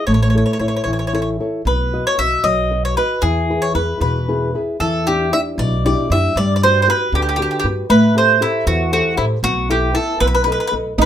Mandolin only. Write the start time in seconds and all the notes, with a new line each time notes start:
0.07 C#5
0.14 C#5
0.23 C#5
0.30 C#5
0.38 C#5
0.46 C#5
0.53 C#5
0.59 C#5
0.68 C#5
0.76 C#5
0.84 C#5
0.93 C#5
0.99 C#5
1.07 C#5
1.15 C#5
1.22 C#5
1.67 B4
2.07 C#5
2.19 E5
2.44 D#5
2.85 C#5
2.97 B4
3.22 G#4
3.62 C#5
3.75 B4
4.01 B4
4.80 A4
5.07 G4
5.33 E5
5.59 D5
5.86 D5
6.12 E5
6.37 D5
6.56 D5
6.63 C5
6.82 C5
6.90 B4
7.15 G4
7.22 G4
7.29 G4
7.36 G4
7.42 G4
7.51 G4
7.60 G4
7.90 B4
8.18 C5
8.42 E4
8.67 F#4
8.93 F#4
9.17 E4
9.44 F#4
9.71 G4
9.95 A4
10.20 B4
10.27 B4
10.35 B4
10.44 B4
10.52 B4
10.60 B4
10.67 B4
11.02 B4